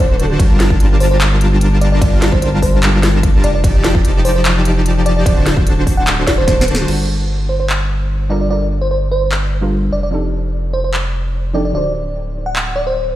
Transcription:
Already playing: D1 D3 D4 F#4 C5 A5
0.20 closed hi-hat
0.39 G1 G3 D4 F4 A#4 A5, kick, closed hi-hat, ride
0.60 snare, closed hi-hat
0.70 G3 D4 F4 A#4 A5, kick
0.80 closed hi-hat
1.00 C5, open hi-hat
1.11 C5
1.21 clap, closed hi-hat
1.41 closed hi-hat
1.61 closed hi-hat
1.81 D5, closed hi-hat
1.92 D5
2.01 G3 D4 F4 A#4 D5 A5, kick, closed hi-hat, ride
2.22 snare, closed hi-hat
2.32 D4 F4 C5 A5, kick
2.42 C5, closed hi-hat
2.62 C5, kick, open hi-hat
2.83 clap, closed hi-hat
3.03 snare, closed hi-hat
3.23 kick, closed hi-hat
3.44 F1 D5, closed hi-hat
3.55 D5
3.64 F3 D#4 G4 D5 A5, kick, closed hi-hat, ride
3.84 snare, closed hi-hat
3.95 F3 D#4 G4 D5 A5, kick
4.05 closed hi-hat
4.25 C5, open hi-hat
4.36 C5
4.45 clap, closed hi-hat
4.65 closed hi-hat
4.86 closed hi-hat
5.06 D5, closed hi-hat
5.17 D5
5.26 D1 D3 D5, kick, closed hi-hat, ride
5.46 snare, closed hi-hat
5.57 D3 D4 F#4 C5 A5, kick
5.67 closed hi-hat
5.87 kick, open hi-hat
5.97 F#5
6.07 clap, closed hi-hat
6.27 D5, kick, snare, closed hi-hat
6.38 C5
6.48 kick, snare, closed hi-hat
6.61 snare
6.68 closed hi-hat
6.75 snare
6.86 G1 G3 D4 F4 A4, crash
6.90 A#4
7.49 C5
7.60 C5
7.70 clap
8.29 G3 D4 F4 A4 A#4 D5
8.41 D5
8.49 G3 D4 F4 A4 D5
8.53 A#4
8.81 C5
8.91 C5
9.11 C5
9.32 clap
9.61 G3 D4 F4 A4 A#4
9.92 F1 D5
10.03 D5
10.10 F3 C4 D4 D#4 G4 A4
10.73 C5
10.84 C5
10.94 clap
11.53 F3 C4 D4 D#4 G4 A4 D5
11.65 D5
11.73 D1 D3 D4 F#4 A4 D5
11.77 C5
12.46 F#5
12.56 clap
12.76 D5
12.87 C5

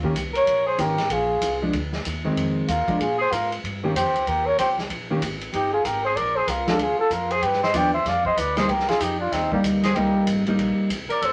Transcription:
Already playing: D#2
0.03 D#3 A#3 C#4 G4, kick
0.15 C2, kick, hi-hat pedal, ride
0.33 A#4 C#5, ride
0.47 A#1, kick, ride
0.66 G#4 C5
0.78 G#1 D#3 A#3 C#4 G4 A#4, kick, hi-hat pedal, ride
0.98 snare, ride
1.09 A#1 F4 G#4, kick, ride
1.41 C2, kick, hi-hat pedal, ride
1.62 F3 G#3 D4
1.73 D2, kick, ride
1.93 snare
2.05 D#2, kick, hi-hat pedal, ride
2.25 D#3 G#3 C4
2.36 F2, kick, ride
2.68 D#2 F4 A#4, kick, hi-hat pedal, ride
2.88 F3 G#3 D4, kick, ride
3.00 A#2 F4 G#4, kick, ride
3.18 G#4 C5
3.32 G#2 F4 A#4, kick, hi-hat pedal, ride
3.52 ride
3.63 G2, kick, ride
3.83 D#3 A#3 C#4 G4
3.95 F2 G4 C5, kick, hi-hat pedal, ride
4.06 D#2
4.16 C#2, ride
4.27 D#2 G4 A#4, kick, ride
4.46 A#4 C#5
4.58 C2 G4 C5, kick, hi-hat pedal, ride
4.78 snare
4.90 A#1, kick, ride
5.10 D#3 A#3 C#4 G4
5.21 G#1, kick, hi-hat pedal, ride
5.41 ride
5.53 G1 D#4 G4, kick, ride
5.73 F4 G#4
5.84 G#1 G4 A#4, kick, hi-hat pedal, ride
6.04 G#4 C5
6.16 A#1 A#4 D5, kick, ride
6.36 G#4 C5
6.47 C2 F4 A#4, kick, hi-hat pedal, ride
6.67 F3 G#3 D4 F4 A4, snare, ride
6.79 D2 F4 G#4, kick, ride
6.99 F4 A4, muted upright bass stroke
7.10 F2 F4 A#4, kick, hi-hat pedal, ride
7.30 G#4 C5, ride
7.42 G2 G4 B4, kick, ride
7.53 snare
7.63 C5 D#5, snare
7.73 D#2 F3 B3 D4 D5 G5, kick, hi-hat pedal, ride
7.94 C5 E5
8.05 F2 D5 F5, kick, snare, ride
8.25 C5 D#5, kick
8.37 D2 B4 D5, kick, hi-hat pedal, ride
8.57 G3 A#3 D#4 G#4 C5, snare, ride
8.68 C2 G4 A#4, kick, ride
8.79 snare
8.88 F4 G#4, snare, ride
9.00 F2 D#4 G4, kick, hi-hat pedal, ride
9.19 D4 F4
9.32 D#2 C4 D#4, kick, snare, ride
9.52 G3 A#3 D#4, kick
9.64 D2, kick, hi-hat pedal, ride
9.83 G#4 C5, snare, ride
9.95 C2 G3 A#3 D#4 G4 A#4, kick, ride
10.27 G#1, kick, hi-hat pedal, ride
10.46 G3 A#3 D#4, ride
10.58 A#1, kick, ride
10.90 C2, kick, hi-hat pedal, ride
11.09 A#4 D5, muted upright bass stroke, ride
11.22 F1 A4 C5, kick, ride

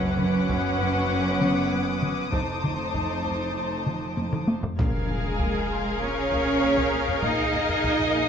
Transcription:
Already playing: F#1 F#2 B3 C#4 B4 F#5 D6
0.19 F#2, taiko mid
0.49 F#2 D#6, taiko
0.81 F#2
1.12 F#2
1.41 F#3, taiko mid
1.73 F#2
2.02 F#2, taiko mid
2.33 F1 F2 A3 D#4 C5 A5, taiko
2.64 F2, taiko mid
2.94 F2, taiko
3.25 F2
3.56 F2
3.86 F3, taiko mid
4.17 F2, taiko high
4.33 taiko mid
4.48 F2, taiko high
4.63 taiko low
4.78 A#1 A#2 G#4 A#4 F5 F6 G#6, taiko, impact
5.09 A#2 G#3 G#4, taiko low
5.24 taiko low
5.39 A#2 G6, taiko
5.55 taiko low
5.71 A#3 C6
6.00 A#2 C#4 C#5
6.32 A#3, taiko
6.63 A#3 A#5
6.77 taiko
6.93 A#3
7.08 taiko low
7.23 A#2 D#4 D#5, taiko
7.54 A#2, taiko low
7.69 taiko low
7.84 A#2, taiko
8.00 taiko low
8.15 A#3

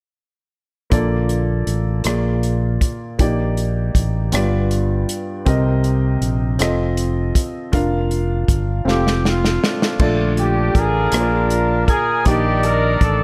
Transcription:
0.90 A#1 D3 A#3 F4 A4 D5, kick, closed hi-hat
1.29 closed hi-hat
1.67 A1, closed hi-hat
2.04 A#1 A#2 A#3 F4 G#4 D5, cross-stick, closed hi-hat
2.43 closed hi-hat
2.81 kick, closed hi-hat
3.19 A#1 A#3 D#4 G4 D5, kick, closed hi-hat
3.57 closed hi-hat
3.95 A1, kick, closed hi-hat
4.32 G1 G2 B3 F4 G4 D5, cross-stick, closed hi-hat
4.71 closed hi-hat
5.09 closed hi-hat
5.45 C2 C3 C4 G4 A#4 D#5, kick, closed hi-hat
5.84 closed hi-hat
6.21 A#1, closed hi-hat
6.59 F1 C4 F4 A4 D#5, cross-stick, closed hi-hat
6.97 closed hi-hat
7.35 kick, closed hi-hat
7.72 F1 D4 F4 A#4 F5, kick, closed hi-hat
8.11 closed hi-hat
8.48 G1, kick, closed hi-hat
8.85 F1 C4 F4 G4 A4 F5, snare
9.07 snare
9.25 F4, snare
9.45 snare
9.63 A3 D4 F4, snare
9.82 snare
9.99 A#1 D3 A3 F4 A4 D5, kick, crash
10.37 G4, closed hi-hat
10.75 A1 D4 F4 G#4 A#4, kick, closed hi-hat
11.12 A#1 A#2 A#3 F4 G#4 C5, cross-stick, closed hi-hat
11.21 D5
11.50 closed hi-hat
11.87 G#4 A#4, kick, closed hi-hat
12.25 A#1 D#3 A#3 D4 D#4 G4 D5, kick, closed hi-hat
12.63 A#4, closed hi-hat
13.01 A1 A4, kick, closed hi-hat

